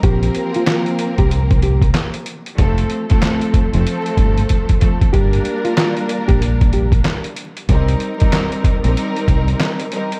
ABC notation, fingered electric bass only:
X:1
M:4/4
L:1/16
Q:"Swing 16ths" 1/4=94
K:Gm
V:1 name="Fingered electric bass" clef=bass
B,,,2 z4 z C,,4- C,, z4 | F,,,2 z4 z F,,, z2 G,,,2 z4 | G,,,2 z4 z B,,,4- B,,, z4 | C,,2 z4 z B,,, z2 C,,2 z4 |]